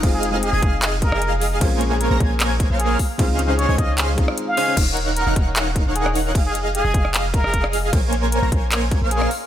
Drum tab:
CC |x-------x-------|x-------x-------|x-------x-------|x-------x-------|
HH |x-x-x-x-x-x-x-o-|x-x-x-x-x-x-x-o-|x-x-x-x-x-x-x-o-|x-x-x-x-x-x-x-o-|
CP |--------x-------|--------x-------|--------x-------|--------x-------|
SD |-----------r----|----------------|-----------r----|-------------r--|
BD |o-----o---o-----|o-----o---o---o-|o-----o---o-----|o-----o---o-----|

CC |x-------x-------|x-------x-------|
HH |x-x-x-x-x-x-x-o-|x-x-x-x-x-x-x-o-|
CP |--------x-------|--------x-------|
SD |-------r---r-r--|-------------r--|
BD |o-----o---o-o---|o-----o---o-----|